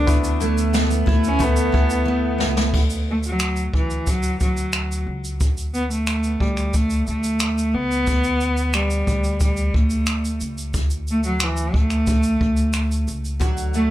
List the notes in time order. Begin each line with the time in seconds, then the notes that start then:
Already playing: A3 B3 D4 G4 A4
0.06 D2 A3 B3 E4 B4, kick, shaker
0.24 shaker
0.40 A3 E4, shaker
0.58 shaker
0.73 B3, snare, shaker
0.91 shaker
1.06 D2 E4, kick
1.12 A3
1.24 shaker
1.28 C#4
1.39 A3 B3 E4 A4 B4, kick, shaker
1.45 B3
1.56 shaker
1.72 D2 B3 E4, kick
1.90 shaker
2.05 A3 B3
2.38 C#2 B3 E4, snare
2.57 snare
2.74 D2, kick, crash
2.90 shaker
3.11 A3
3.23 shaker
3.27 F#3
3.40 finger snap, shaker
3.56 shaker
3.73 D2 E3, kick
3.90 shaker
4.07 F#3, kick, shaker
4.23 shaker
4.40 D2 F#3, kick, shaker
4.57 shaker
4.73 finger snap, shaker
4.92 shaker
5.07 C#2
5.24 shaker
5.41 D2, kick, shaker
5.57 shaker
5.74 B3, shaker
5.91 A3, shaker
6.07 finger snap, shaker
6.23 shaker
6.40 D2 G3, kick
6.57 finger snap, shaker
6.74 A3, kick, shaker
6.90 shaker
7.07 D2 A3, shaker
7.23 shaker
7.40 finger snap, shaker
7.58 shaker
7.74 C#2 B3
7.91 shaker
8.07 D2, kick, shaker
8.24 shaker
8.41 shaker
8.57 shaker
8.73 G3, finger snap, shaker
8.90 shaker
9.07 D2, kick, shaker
9.24 shaker
9.40 G3, kick, shaker
9.57 shaker
9.74 D2 A3, kick
9.90 shaker
10.06 finger snap, shaker
10.25 shaker
10.40 C#2, shaker
10.58 shaker
10.74 D2, kick, shaker
10.90 shaker
11.08 A3, shaker
11.23 F#3, shaker
11.40 finger snap, shaker
11.44 E3
11.57 shaker
11.74 D2 A3, kick
11.90 finger snap, shaker
12.07 kick, shaker
12.23 shaker
12.41 D2, kick
12.57 shaker
12.73 finger snap, shaker
12.91 shaker
13.08 C#2, shaker
13.25 shaker
13.40 D2 D3 F#3 F#4, kick, shaker
13.57 shaker
13.74 A3, shaker